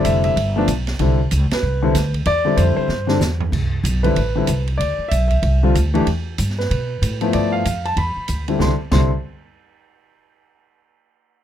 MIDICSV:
0, 0, Header, 1, 5, 480
1, 0, Start_track
1, 0, Key_signature, 0, "major"
1, 0, Tempo, 316456
1, 1515, Time_signature, 4, 2, 24, 8
1, 17351, End_track
2, 0, Start_track
2, 0, Title_t, "Grand piano"
2, 0, Program_c, 0, 0
2, 0, Note_on_c, 0, 50, 65
2, 0, Note_on_c, 0, 55, 60
2, 0, Note_on_c, 0, 60, 54
2, 0, Note_on_c, 0, 64, 72
2, 66, Note_on_c, 0, 76, 92
2, 349, Note_off_c, 0, 76, 0
2, 372, Note_on_c, 0, 76, 80
2, 519, Note_off_c, 0, 50, 0
2, 523, Note_off_c, 0, 55, 0
2, 523, Note_off_c, 0, 60, 0
2, 528, Note_off_c, 0, 64, 0
2, 847, Note_on_c, 0, 53, 67
2, 854, Note_on_c, 0, 57, 62
2, 863, Note_on_c, 0, 59, 64
2, 878, Note_on_c, 0, 62, 82
2, 988, Note_off_c, 0, 76, 0
2, 1014, Note_off_c, 0, 53, 0
2, 1017, Note_off_c, 0, 57, 0
2, 1022, Note_off_c, 0, 59, 0
2, 1029, Note_off_c, 0, 62, 0
2, 1512, Note_on_c, 0, 50, 64
2, 1529, Note_on_c, 0, 55, 58
2, 1534, Note_on_c, 0, 60, 53
2, 1540, Note_on_c, 0, 64, 67
2, 1782, Note_off_c, 0, 50, 0
2, 1790, Note_off_c, 0, 55, 0
2, 1793, Note_off_c, 0, 60, 0
2, 1796, Note_off_c, 0, 64, 0
2, 2336, Note_on_c, 0, 71, 77
2, 2768, Note_on_c, 0, 50, 70
2, 2775, Note_on_c, 0, 55, 61
2, 2784, Note_on_c, 0, 60, 66
2, 2787, Note_on_c, 0, 64, 75
2, 2934, Note_off_c, 0, 50, 0
2, 2937, Note_off_c, 0, 55, 0
2, 2942, Note_off_c, 0, 60, 0
2, 2943, Note_off_c, 0, 64, 0
2, 3213, Note_off_c, 0, 71, 0
2, 3438, Note_on_c, 0, 74, 106
2, 3713, Note_on_c, 0, 50, 63
2, 3728, Note_on_c, 0, 55, 59
2, 3738, Note_on_c, 0, 60, 59
2, 3742, Note_on_c, 0, 64, 72
2, 3901, Note_on_c, 0, 72, 74
2, 3930, Note_off_c, 0, 74, 0
2, 4172, Note_off_c, 0, 72, 0
2, 4195, Note_on_c, 0, 72, 86
2, 4348, Note_off_c, 0, 50, 0
2, 4356, Note_off_c, 0, 55, 0
2, 4360, Note_off_c, 0, 60, 0
2, 4363, Note_off_c, 0, 64, 0
2, 4659, Note_on_c, 0, 50, 65
2, 4669, Note_on_c, 0, 55, 66
2, 4679, Note_on_c, 0, 60, 65
2, 4688, Note_on_c, 0, 62, 67
2, 4819, Note_off_c, 0, 72, 0
2, 4839, Note_off_c, 0, 50, 0
2, 4845, Note_off_c, 0, 55, 0
2, 4849, Note_off_c, 0, 60, 0
2, 4854, Note_off_c, 0, 62, 0
2, 6115, Note_on_c, 0, 71, 81
2, 6125, Note_on_c, 0, 50, 66
2, 6138, Note_on_c, 0, 55, 61
2, 6140, Note_on_c, 0, 60, 57
2, 6154, Note_on_c, 0, 64, 76
2, 6293, Note_off_c, 0, 50, 0
2, 6299, Note_off_c, 0, 55, 0
2, 6300, Note_off_c, 0, 60, 0
2, 6307, Note_off_c, 0, 64, 0
2, 6606, Note_on_c, 0, 50, 64
2, 6623, Note_on_c, 0, 55, 55
2, 6623, Note_on_c, 0, 60, 56
2, 6637, Note_on_c, 0, 64, 69
2, 6773, Note_off_c, 0, 50, 0
2, 6781, Note_off_c, 0, 60, 0
2, 6782, Note_off_c, 0, 55, 0
2, 6789, Note_off_c, 0, 64, 0
2, 7023, Note_off_c, 0, 71, 0
2, 7244, Note_on_c, 0, 74, 86
2, 7712, Note_on_c, 0, 76, 87
2, 7754, Note_off_c, 0, 74, 0
2, 7983, Note_off_c, 0, 76, 0
2, 8006, Note_on_c, 0, 76, 78
2, 8542, Note_on_c, 0, 50, 66
2, 8547, Note_on_c, 0, 55, 63
2, 8556, Note_on_c, 0, 60, 65
2, 8562, Note_on_c, 0, 65, 76
2, 8644, Note_off_c, 0, 76, 0
2, 8701, Note_off_c, 0, 50, 0
2, 8704, Note_off_c, 0, 55, 0
2, 8709, Note_off_c, 0, 60, 0
2, 8712, Note_off_c, 0, 65, 0
2, 9006, Note_on_c, 0, 52, 76
2, 9009, Note_on_c, 0, 57, 61
2, 9022, Note_on_c, 0, 62, 65
2, 9025, Note_on_c, 0, 67, 79
2, 9173, Note_off_c, 0, 52, 0
2, 9175, Note_off_c, 0, 57, 0
2, 9182, Note_off_c, 0, 62, 0
2, 9183, Note_off_c, 0, 67, 0
2, 9989, Note_on_c, 0, 71, 67
2, 10937, Note_on_c, 0, 53, 69
2, 10948, Note_on_c, 0, 57, 65
2, 10959, Note_on_c, 0, 59, 66
2, 10962, Note_on_c, 0, 64, 75
2, 11063, Note_off_c, 0, 71, 0
2, 11130, Note_on_c, 0, 74, 79
2, 11401, Note_off_c, 0, 74, 0
2, 11412, Note_on_c, 0, 77, 82
2, 11561, Note_off_c, 0, 53, 0
2, 11567, Note_off_c, 0, 57, 0
2, 11572, Note_off_c, 0, 59, 0
2, 11574, Note_off_c, 0, 64, 0
2, 11908, Note_off_c, 0, 77, 0
2, 11914, Note_on_c, 0, 81, 86
2, 12092, Note_off_c, 0, 81, 0
2, 12105, Note_on_c, 0, 83, 79
2, 12816, Note_off_c, 0, 83, 0
2, 12865, Note_on_c, 0, 50, 56
2, 12871, Note_on_c, 0, 55, 57
2, 12876, Note_on_c, 0, 60, 56
2, 12884, Note_on_c, 0, 64, 65
2, 13008, Note_off_c, 0, 50, 0
2, 13012, Note_off_c, 0, 60, 0
2, 13016, Note_off_c, 0, 55, 0
2, 13019, Note_off_c, 0, 64, 0
2, 13030, Note_on_c, 0, 50, 62
2, 13035, Note_on_c, 0, 60, 51
2, 13039, Note_on_c, 0, 55, 54
2, 13042, Note_on_c, 0, 64, 70
2, 13068, Note_on_c, 0, 84, 68
2, 13213, Note_off_c, 0, 50, 0
2, 13215, Note_off_c, 0, 60, 0
2, 13217, Note_off_c, 0, 55, 0
2, 13219, Note_off_c, 0, 64, 0
2, 13220, Note_off_c, 0, 84, 0
2, 13521, Note_on_c, 0, 50, 61
2, 13530, Note_on_c, 0, 84, 65
2, 13533, Note_on_c, 0, 55, 58
2, 13545, Note_on_c, 0, 60, 55
2, 13548, Note_on_c, 0, 64, 68
2, 13788, Note_off_c, 0, 50, 0
2, 13794, Note_off_c, 0, 55, 0
2, 13800, Note_off_c, 0, 60, 0
2, 13801, Note_off_c, 0, 64, 0
2, 13802, Note_off_c, 0, 84, 0
2, 17351, End_track
3, 0, Start_track
3, 0, Title_t, "Upright bass"
3, 0, Program_c, 1, 32
3, 73, Note_on_c, 1, 29, 87
3, 540, Note_off_c, 1, 29, 0
3, 549, Note_on_c, 1, 31, 73
3, 1018, Note_off_c, 1, 31, 0
3, 1026, Note_on_c, 1, 35, 84
3, 1496, Note_off_c, 1, 35, 0
3, 1509, Note_on_c, 1, 36, 78
3, 1977, Note_off_c, 1, 36, 0
3, 1996, Note_on_c, 1, 37, 93
3, 2273, Note_off_c, 1, 37, 0
3, 2469, Note_on_c, 1, 36, 76
3, 2937, Note_off_c, 1, 36, 0
3, 2954, Note_on_c, 1, 38, 81
3, 3420, Note_off_c, 1, 38, 0
3, 3426, Note_on_c, 1, 40, 75
3, 3896, Note_off_c, 1, 40, 0
3, 3902, Note_on_c, 1, 41, 84
3, 4185, Note_off_c, 1, 41, 0
3, 4373, Note_on_c, 1, 43, 73
3, 4838, Note_off_c, 1, 43, 0
3, 4848, Note_on_c, 1, 40, 77
3, 5326, Note_off_c, 1, 40, 0
3, 5339, Note_on_c, 1, 36, 76
3, 5812, Note_off_c, 1, 36, 0
3, 5818, Note_on_c, 1, 35, 86
3, 6292, Note_off_c, 1, 35, 0
3, 6310, Note_on_c, 1, 33, 73
3, 6778, Note_off_c, 1, 33, 0
3, 6794, Note_on_c, 1, 36, 77
3, 7260, Note_off_c, 1, 36, 0
3, 7272, Note_on_c, 1, 38, 71
3, 7551, Note_off_c, 1, 38, 0
3, 7758, Note_on_c, 1, 35, 80
3, 8222, Note_off_c, 1, 35, 0
3, 8230, Note_on_c, 1, 36, 73
3, 8698, Note_off_c, 1, 36, 0
3, 8718, Note_on_c, 1, 38, 81
3, 9183, Note_off_c, 1, 38, 0
3, 9201, Note_on_c, 1, 40, 69
3, 9664, Note_off_c, 1, 40, 0
3, 9684, Note_on_c, 1, 43, 87
3, 10146, Note_off_c, 1, 43, 0
3, 10171, Note_on_c, 1, 47, 74
3, 10629, Note_off_c, 1, 47, 0
3, 10646, Note_on_c, 1, 45, 78
3, 11107, Note_off_c, 1, 45, 0
3, 11136, Note_on_c, 1, 43, 73
3, 11592, Note_off_c, 1, 43, 0
3, 11610, Note_on_c, 1, 41, 81
3, 12069, Note_off_c, 1, 41, 0
3, 12082, Note_on_c, 1, 40, 76
3, 12357, Note_off_c, 1, 40, 0
3, 12570, Note_on_c, 1, 38, 72
3, 13029, Note_off_c, 1, 38, 0
3, 13046, Note_on_c, 1, 36, 73
3, 13209, Note_off_c, 1, 36, 0
3, 13525, Note_on_c, 1, 36, 81
3, 13799, Note_off_c, 1, 36, 0
3, 17351, End_track
4, 0, Start_track
4, 0, Title_t, "Muted upright bass strokes"
4, 2294, Note_on_c, 9, 29, 36
4, 2446, Note_off_c, 9, 29, 0
4, 4208, Note_on_c, 9, 29, 33
4, 4360, Note_off_c, 9, 29, 0
4, 7559, Note_on_c, 9, 29, 36
4, 7710, Note_off_c, 9, 29, 0
4, 12385, Note_on_c, 9, 29, 32
4, 12537, Note_off_c, 9, 29, 0
4, 17351, End_track
5, 0, Start_track
5, 0, Title_t, "Drums"
5, 71, Note_on_c, 9, 44, 48
5, 71, Note_on_c, 9, 51, 62
5, 72, Note_on_c, 9, 36, 19
5, 223, Note_off_c, 9, 44, 0
5, 223, Note_off_c, 9, 51, 0
5, 224, Note_off_c, 9, 36, 0
5, 360, Note_on_c, 9, 51, 39
5, 511, Note_off_c, 9, 51, 0
5, 554, Note_on_c, 9, 36, 21
5, 561, Note_on_c, 9, 51, 56
5, 706, Note_off_c, 9, 36, 0
5, 713, Note_off_c, 9, 51, 0
5, 1027, Note_on_c, 9, 44, 51
5, 1027, Note_on_c, 9, 51, 63
5, 1031, Note_on_c, 9, 36, 24
5, 1179, Note_off_c, 9, 44, 0
5, 1179, Note_off_c, 9, 51, 0
5, 1183, Note_off_c, 9, 36, 0
5, 1320, Note_on_c, 9, 51, 42
5, 1326, Note_on_c, 9, 38, 36
5, 1472, Note_off_c, 9, 51, 0
5, 1478, Note_off_c, 9, 38, 0
5, 1503, Note_on_c, 9, 51, 54
5, 1510, Note_on_c, 9, 36, 20
5, 1655, Note_off_c, 9, 51, 0
5, 1661, Note_off_c, 9, 36, 0
5, 1987, Note_on_c, 9, 44, 57
5, 1987, Note_on_c, 9, 51, 62
5, 1992, Note_on_c, 9, 36, 19
5, 2138, Note_off_c, 9, 44, 0
5, 2138, Note_off_c, 9, 51, 0
5, 2144, Note_off_c, 9, 36, 0
5, 2295, Note_on_c, 9, 51, 61
5, 2301, Note_on_c, 9, 38, 75
5, 2447, Note_off_c, 9, 51, 0
5, 2453, Note_off_c, 9, 38, 0
5, 2952, Note_on_c, 9, 36, 25
5, 2953, Note_on_c, 9, 44, 49
5, 2953, Note_on_c, 9, 51, 67
5, 2959, Note_on_c, 9, 38, 36
5, 3104, Note_off_c, 9, 36, 0
5, 3105, Note_off_c, 9, 44, 0
5, 3105, Note_off_c, 9, 51, 0
5, 3111, Note_off_c, 9, 38, 0
5, 3248, Note_on_c, 9, 36, 48
5, 3249, Note_on_c, 9, 51, 38
5, 3400, Note_off_c, 9, 36, 0
5, 3401, Note_off_c, 9, 51, 0
5, 3420, Note_on_c, 9, 51, 63
5, 3426, Note_on_c, 9, 36, 18
5, 3572, Note_off_c, 9, 51, 0
5, 3578, Note_off_c, 9, 36, 0
5, 3905, Note_on_c, 9, 44, 51
5, 3905, Note_on_c, 9, 51, 64
5, 4056, Note_off_c, 9, 44, 0
5, 4056, Note_off_c, 9, 51, 0
5, 4381, Note_on_c, 9, 38, 42
5, 4532, Note_off_c, 9, 38, 0
5, 4679, Note_on_c, 9, 38, 51
5, 4830, Note_off_c, 9, 38, 0
5, 4866, Note_on_c, 9, 44, 61
5, 4873, Note_on_c, 9, 38, 66
5, 5018, Note_off_c, 9, 44, 0
5, 5024, Note_off_c, 9, 38, 0
5, 5161, Note_on_c, 9, 43, 66
5, 5312, Note_off_c, 9, 43, 0
5, 5344, Note_on_c, 9, 36, 74
5, 5356, Note_on_c, 9, 49, 68
5, 5496, Note_off_c, 9, 36, 0
5, 5507, Note_off_c, 9, 49, 0
5, 5826, Note_on_c, 9, 36, 20
5, 5836, Note_on_c, 9, 44, 57
5, 5836, Note_on_c, 9, 51, 65
5, 5977, Note_off_c, 9, 36, 0
5, 5988, Note_off_c, 9, 44, 0
5, 5988, Note_off_c, 9, 51, 0
5, 6132, Note_on_c, 9, 51, 40
5, 6283, Note_off_c, 9, 51, 0
5, 6307, Note_on_c, 9, 36, 19
5, 6313, Note_on_c, 9, 51, 60
5, 6458, Note_off_c, 9, 36, 0
5, 6464, Note_off_c, 9, 51, 0
5, 6782, Note_on_c, 9, 44, 56
5, 6782, Note_on_c, 9, 51, 64
5, 6788, Note_on_c, 9, 36, 18
5, 6934, Note_off_c, 9, 44, 0
5, 6934, Note_off_c, 9, 51, 0
5, 6939, Note_off_c, 9, 36, 0
5, 7091, Note_on_c, 9, 51, 41
5, 7243, Note_off_c, 9, 51, 0
5, 7274, Note_on_c, 9, 36, 22
5, 7288, Note_on_c, 9, 51, 58
5, 7425, Note_off_c, 9, 36, 0
5, 7440, Note_off_c, 9, 51, 0
5, 7754, Note_on_c, 9, 36, 24
5, 7755, Note_on_c, 9, 44, 48
5, 7755, Note_on_c, 9, 51, 64
5, 7906, Note_off_c, 9, 36, 0
5, 7907, Note_off_c, 9, 44, 0
5, 7907, Note_off_c, 9, 51, 0
5, 8047, Note_on_c, 9, 51, 39
5, 8053, Note_on_c, 9, 36, 50
5, 8199, Note_off_c, 9, 51, 0
5, 8204, Note_off_c, 9, 36, 0
5, 8231, Note_on_c, 9, 51, 53
5, 8383, Note_off_c, 9, 51, 0
5, 8727, Note_on_c, 9, 44, 55
5, 8727, Note_on_c, 9, 51, 57
5, 8879, Note_off_c, 9, 44, 0
5, 8879, Note_off_c, 9, 51, 0
5, 9025, Note_on_c, 9, 51, 36
5, 9177, Note_off_c, 9, 51, 0
5, 9203, Note_on_c, 9, 51, 55
5, 9204, Note_on_c, 9, 36, 23
5, 9355, Note_off_c, 9, 51, 0
5, 9356, Note_off_c, 9, 36, 0
5, 9679, Note_on_c, 9, 44, 59
5, 9679, Note_on_c, 9, 51, 63
5, 9831, Note_off_c, 9, 44, 0
5, 9831, Note_off_c, 9, 51, 0
5, 9856, Note_on_c, 9, 38, 24
5, 10008, Note_off_c, 9, 38, 0
5, 10011, Note_on_c, 9, 38, 38
5, 10163, Note_off_c, 9, 38, 0
5, 10173, Note_on_c, 9, 36, 21
5, 10178, Note_on_c, 9, 51, 56
5, 10325, Note_off_c, 9, 36, 0
5, 10330, Note_off_c, 9, 51, 0
5, 10651, Note_on_c, 9, 36, 16
5, 10656, Note_on_c, 9, 44, 52
5, 10656, Note_on_c, 9, 51, 64
5, 10802, Note_off_c, 9, 36, 0
5, 10808, Note_off_c, 9, 44, 0
5, 10808, Note_off_c, 9, 51, 0
5, 10934, Note_on_c, 9, 51, 38
5, 11086, Note_off_c, 9, 51, 0
5, 11120, Note_on_c, 9, 51, 56
5, 11126, Note_on_c, 9, 36, 16
5, 11272, Note_off_c, 9, 51, 0
5, 11278, Note_off_c, 9, 36, 0
5, 11609, Note_on_c, 9, 36, 19
5, 11610, Note_on_c, 9, 44, 53
5, 11610, Note_on_c, 9, 51, 64
5, 11761, Note_off_c, 9, 36, 0
5, 11762, Note_off_c, 9, 44, 0
5, 11762, Note_off_c, 9, 51, 0
5, 11914, Note_on_c, 9, 51, 36
5, 12065, Note_off_c, 9, 51, 0
5, 12083, Note_on_c, 9, 36, 23
5, 12084, Note_on_c, 9, 51, 50
5, 12235, Note_off_c, 9, 36, 0
5, 12236, Note_off_c, 9, 51, 0
5, 12556, Note_on_c, 9, 44, 49
5, 12556, Note_on_c, 9, 51, 53
5, 12563, Note_on_c, 9, 36, 22
5, 12708, Note_off_c, 9, 44, 0
5, 12708, Note_off_c, 9, 51, 0
5, 12715, Note_off_c, 9, 36, 0
5, 12860, Note_on_c, 9, 51, 38
5, 13012, Note_off_c, 9, 51, 0
5, 13044, Note_on_c, 9, 36, 75
5, 13048, Note_on_c, 9, 38, 68
5, 13196, Note_off_c, 9, 36, 0
5, 13200, Note_off_c, 9, 38, 0
5, 13522, Note_on_c, 9, 38, 68
5, 13522, Note_on_c, 9, 49, 72
5, 13529, Note_on_c, 9, 36, 79
5, 13674, Note_off_c, 9, 38, 0
5, 13674, Note_off_c, 9, 49, 0
5, 13681, Note_off_c, 9, 36, 0
5, 17351, End_track
0, 0, End_of_file